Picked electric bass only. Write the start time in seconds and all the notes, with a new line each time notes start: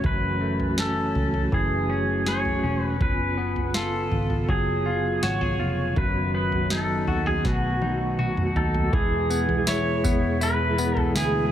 0.04 F#1
1.16 C#2
1.52 F#1
2.64 E1
3.00 F#1
4.12 G#1
4.49 F#1
5.23 G#1
5.59 F1
5.97 F#1
7.08 D#2
7.45 B1
8.56 D#2
8.93 E2
9.48 E2
10.04 E2
11.15 D2